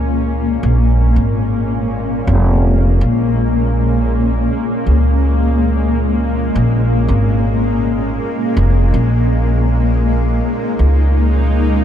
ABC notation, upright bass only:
X:1
M:4/4
L:1/16
Q:"Swing 16ths" 1/4=81
K:Bbm
V:1 name="Upright bass" clef=bass
D,,3 B,,,3 A,,,6 F,,,4 | B,,,8 z2 D,,6- | D,,3 B,,,3 A,,,6 z2 F,,,2 | B,,,8 z2 D,,6 |]